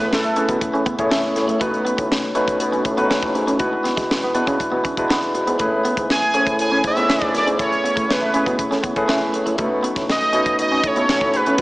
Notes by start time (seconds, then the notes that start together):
Already playing: A3 C#4 E4 G#4 B4
0.11 A3 A4, muted clean electric guitar stroke, snare
0.24 A3, closed hi-hat
0.36 A3 C#4 E4 G#4 B4, closed hi-hat
0.48 B2 B3, kick, closed hi-hat
0.61 muted clean electric guitar stroke, kick, closed hi-hat
0.73 A2 C#4, closed hi-hat
0.86 B3, kick, closed hi-hat
0.98 A2 A3 C#4 E4 G#4 C#5, kick, closed hi-hat
1.11 A3 C#4 E5, snare
1.36 A2 C#5, muted clean electric guitar stroke, snare, closed hi-hat
1.48 A2 A3, closed hi-hat
1.60 B2 A3 C#4 D#4 F#4 B4, kick, closed hi-hat
1.74 closed hi-hat
1.85 B3, closed hi-hat
1.97 A2, muted clean electric guitar stroke, kick, closed hi-hat
2.12 snare
2.35 B2 A3 C#4 D#4 F#4 B4, closed hi-hat
2.48 kick, closed hi-hat
2.60 B2, closed hi-hat
2.72 C#4, closed hi-hat
2.85 A2, muted clean electric guitar stroke, kick, closed hi-hat
2.97 A3 B3 C#4 D4 F#4 B4, closed hi-hat
3.04 D#4
3.10 C#4, snare
3.23 A2, kick
3.35 G#2, muted clean electric guitar stroke, closed hi-hat
3.47 A2 C#4, closed hi-hat
3.58 B2 G#3 D4 E4 F#4 B4, kick, closed hi-hat
3.73 muted clean electric guitar stroke
3.84 B3, snare, closed hi-hat
3.96 B2 G#3, kick, snare, closed hi-hat
4.09 B3, muted clean electric guitar stroke, snare
4.23 B3, closed hi-hat
4.34 G#3 B3 D4 E4 F#4 B4, closed hi-hat
4.47 C#3 C#4, kick, closed hi-hat
4.60 muted clean electric guitar stroke, kick, closed hi-hat
4.72 B2 B3
4.84 C#4, kick, closed hi-hat
4.97 B2 G#3 D4 E4 F#4 B4, kick, closed hi-hat
5.10 B3 D4, snare
5.22 closed hi-hat
5.35 B2, muted clean electric guitar stroke, closed hi-hat
5.46 G#2 B3, closed hi-hat
5.59 A2 A3 C#4 E4 G#4 B4, kick, closed hi-hat
5.85 B3, closed hi-hat
5.97 G#2, muted clean electric guitar stroke, kick, closed hi-hat
6.10 G#5, snare
6.34 A2 A3 C#4 E4 G#4 C5, closed hi-hat
6.41 C#5
6.47 kick, closed hi-hat
6.59 A2 G#5, closed hi-hat
6.72 C#4
6.84 G#2 E5, muted clean electric guitar stroke, kick, closed hi-hat
6.97 A3 B3 C#4 E4 G#4 B4, closed hi-hat
7.04 C#5
7.09 C#4, snare
7.22 G#2, kick
7.34 F#2 D5, muted clean electric guitar stroke, snare, closed hi-hat
7.46 G#2 C#4, closed hi-hat
7.59 A2 A3 C#4 E4 G#4 C#5, kick, closed hi-hat
7.71 muted clean electric guitar stroke, closed hi-hat
7.84 B3, closed hi-hat
7.96 A2 A3, kick, closed hi-hat
8.09 A3 B4, muted clean electric guitar stroke, snare
8.21 A3
8.34 A3 C#4 E4 G#4 C#5, closed hi-hat
8.46 B2 B3, kick, closed hi-hat
8.59 muted clean electric guitar stroke, kick, closed hi-hat
8.71 A2 C#4, snare, closed hi-hat
8.83 B3, kick, closed hi-hat
8.96 A2 A3 C#4 E4 G#4 B4, kick, closed hi-hat
9.08 A3 C#4, snare
9.33 A2, muted clean electric guitar stroke, closed hi-hat
9.46 A2 A3, closed hi-hat
9.58 B2 A3 C#4 D#4 F#4 A4, kick, closed hi-hat
9.66 B4
9.83 B3, closed hi-hat
9.96 A2, muted clean electric guitar stroke, kick, snare, closed hi-hat
10.09 D#5, snare
10.21 closed hi-hat
10.33 B2 A3 C#4 D#4 F#4 A4, closed hi-hat
10.46 kick, closed hi-hat
10.59 B2 D#5, closed hi-hat
10.72 C#4
10.84 A2 C#5, muted clean electric guitar stroke, kick, closed hi-hat
10.96 A3 B3 C#4 D#4 F#4 A4, closed hi-hat
11.09 C#4, snare
11.21 A2, kick
11.34 G#2 B4, muted clean electric guitar stroke, closed hi-hat
11.46 A2 C#4, closed hi-hat
11.58 B2 G#3 D4 E4 F#4, kick, closed hi-hat